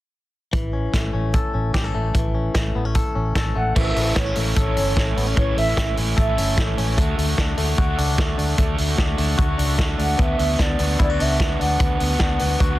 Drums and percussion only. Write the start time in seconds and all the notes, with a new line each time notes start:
0.53 kick, closed hi-hat
0.94 kick, snare, closed hi-hat
1.34 kick, closed hi-hat
1.74 kick, snare, closed hi-hat
2.15 kick, closed hi-hat
2.54 kick, snare, closed hi-hat
2.95 kick, closed hi-hat
3.35 kick, snare, closed hi-hat
3.76 kick, crash
3.96 open hi-hat
4.16 kick, snare, closed hi-hat
4.36 open hi-hat
4.56 kick, closed hi-hat
4.77 open hi-hat
4.97 kick, snare, closed hi-hat
5.17 open hi-hat
5.37 kick, closed hi-hat
5.58 open hi-hat
5.77 kick, snare, closed hi-hat
5.97 open hi-hat
6.18 kick, closed hi-hat
6.38 open hi-hat
6.58 kick, snare, closed hi-hat
6.78 open hi-hat
6.98 kick, closed hi-hat
7.19 open hi-hat
7.38 kick, snare, closed hi-hat
7.58 open hi-hat
7.78 kick, closed hi-hat
7.98 open hi-hat
8.18 kick, snare, closed hi-hat
8.39 open hi-hat
8.58 kick, closed hi-hat
8.78 open hi-hat
8.98 kick, snare, closed hi-hat
9.18 open hi-hat
9.38 kick, closed hi-hat
9.59 open hi-hat
9.79 kick, snare, closed hi-hat
9.99 open hi-hat
10.19 kick, closed hi-hat
10.39 open hi-hat
10.59 kick, snare, closed hi-hat
10.79 open hi-hat
11.00 kick, closed hi-hat
11.20 open hi-hat
11.40 kick, snare, closed hi-hat
11.61 open hi-hat
11.80 kick, closed hi-hat
12.00 open hi-hat
12.19 kick, snare, closed hi-hat
12.39 open hi-hat
12.60 kick, closed hi-hat